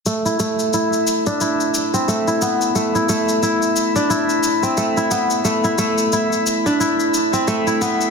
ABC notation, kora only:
X:1
M:4/4
L:1/16
Q:"Swing 16ths" 1/4=89
K:Am
V:1 name="Kora"
A, E A, z E3 D E z2 C A, E B, z | A, E A, z E3 D E z2 C A, E B, z | A, E A, z E3 D E z2 C A, E B, z |]